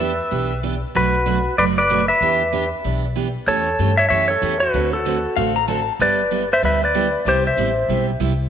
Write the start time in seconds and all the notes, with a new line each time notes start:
Already playing: E2 B4 E5
0.00 E3 B3 D4 G4
0.31 B1 E3 B3 D4 G4
0.63 E3 B3 D4 G4
0.95 B1 B2 F#3 A3 D4 F#4 B4
1.26 B2 F#3 A3 D4 F#4
1.58 F#1 B2 F#3 A3 D4 F#4 B4 D5
1.78 B4 D5
1.90 B2 F#3 A3 D4 F#4
2.08 B4 E5
2.21 E2 E3 B3 D4 G4
2.53 E3 B3 D4 G4
2.84 B1 E3 B3 D4 G4
3.16 E3 B3 D4 G4
3.47 E2 E3 A3 C#4 G4 A4 C#5
3.79 G2 E3 A3 C#4 G4
3.97 C#5 E5
4.09 F#2 E3 A3 C#4 G4 C#5 E5
4.28 A4 C#5
4.42 E2 E3 A3 C#4 G4
4.60 F#4 B4
4.74 D2 D3 A3 C4 F#4 A4
4.93 F#4 A4
5.05 D3 A3 C4 F#4 A4
5.37 A1 D3 A3 C4 F#4 A4 F5
5.56 A#5
5.68 D3 A3 C4 F#4 A4 A5
5.99 G1 G3 B3 E4 G4 B4 D5
6.31 G3 B3 E4 G4
6.53 C5 E5
6.63 D2 G3 B3 E4 G4 B4 E5
6.84 B4 D5
6.95 G3 B3 E4 G4
7.25 C2 C3 G3 B3 E4 G4 C5
7.47 C5 E5
7.57 A1 C3 G3 B3 E4 G4
7.89 B1 C3 G3 B3 E4 G4
8.20 C2 C3 G3 B3 E4 G4